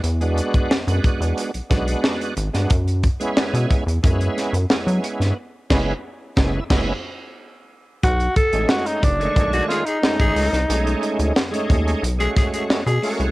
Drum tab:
CC |----------------|----------------|--x-----x-------|----------------|
HH |xxxx-xxxxxxx-xxx|xxxx-xxxxxxx-xxx|----------------|xxxx-xxxxxxx-xox|
SD |----o-----o-o--o|----o-----o-o--o|--o---o-o-------|----o-----o-o--o|
BD |---o--o---o-----|o-o---o-o-------|--o---o-o-------|o-o---o-o----o--|

CC |----------------|
HH |xxxx-xxxxxxx-xox|
SD |----o-----o-o---|
BD |------o---o-----|